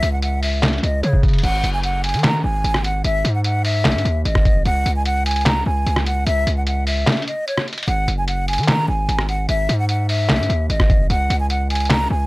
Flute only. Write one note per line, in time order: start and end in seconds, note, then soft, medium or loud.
0.00 0.11 E5 loud
0.13 0.22 F#5 medium
0.23 0.41 F#5 medium
0.43 0.81 E5 medium
0.83 1.01 D#5 medium
1.03 1.21 C#5 medium
1.44 1.72 F#5 loud
1.74 1.83 G#5 medium
1.84 2.02 F#5 medium
2.04 2.22 G#5 medium
2.24 2.42 A#5 medium
2.44 2.82 G#5 medium
2.84 3.03 F#5 medium
3.04 3.33 E5 loud
3.35 3.44 F#5 medium
3.45 3.63 F#5 medium
3.65 4.22 E5 medium
4.25 4.63 D#5 medium
4.66 4.94 F#5 loud
4.96 5.05 G#5 medium
5.06 5.24 F#5 medium
5.26 5.44 G#5 medium
5.46 5.64 A#5 loud
5.66 6.04 G#5 medium
6.06 6.25 F#5 medium
6.27 6.55 E5 loud
6.57 6.66 F#5 medium
6.67 6.85 F#5 medium
6.87 7.25 E5 medium
7.27 7.45 D#5 medium
7.47 7.66 C#5 medium
7.88 8.16 F#5 loud
8.18 8.27 G#5 medium
8.28 8.46 F#5 medium
8.48 8.66 G#5 medium
8.68 8.86 A#5 loud
8.88 9.26 G#5 medium
9.29 9.47 F#5 medium
9.49 9.77 E5 loud
9.79 9.88 F#5 medium
9.89 10.07 F#5 medium
10.09 10.66 E5 medium
10.69 11.07 D#5 medium
11.10 11.38 F#5 loud
11.40 11.49 G#5 medium
11.50 11.68 F#5 medium
11.70 11.88 G#5 medium
11.90 12.08 A#5 loud
12.11 12.27 G#5 medium